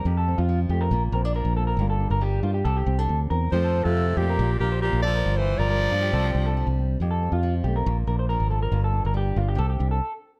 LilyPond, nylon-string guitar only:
\new Staff \with { instrumentName = "Nylon-string guitar" } { \time 4/4 \key f \major \tempo 4 = 138 << { g'8 c'4 a8 f'8 c'16 d'8. bes8 | <g bes d' f'>8 d'4 bes8 g'8 c'16 d'8. c'8 | <f a c' g'>8 c'4 a8 <bes d' f'>8 d'4 bes8 | f'8 d'4 bes8 <g c' d' g'>8 d'4 c'8 |
g'8 c'4 a8 f'8 d'4 bes8 | f'8 d'4 bes8 g'8 d'8 r4 | } \\ { f,4 f4 bes,4 f4 | g,4 g4 c2 | f,4 f4 bes,4 f4 | g,4 g4 c4 g4 |
f,4 f4 bes,4 f4 | g,4 g4 c4 r4 | } >> }